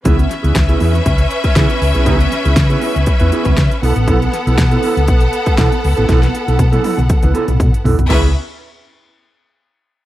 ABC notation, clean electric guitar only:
X:1
M:4/4
L:1/16
Q:1/4=119
K:C#m
V:1 name="Clean electric guitar"
[B,EG] z2 [B,EG] z [B,EG] [B,EG] z4 z [B,EG] z2 [B,EG] | [B,EG]2 z [B,EG] z [B,EG] [B,EG] z2 [B,EB] [B,EG] z3 [B,EA] z | [B,EA] z2 [B,EA] z [B,EA] [B,EA] z4 z [B,EA] z2 [B,EA] | [B,EA] z2 [B,EA] z [B,EA] [B,EA] z2 [B,EB] [B,EA] z3 [B,EA] z |
[B,EG] z12 z3 |]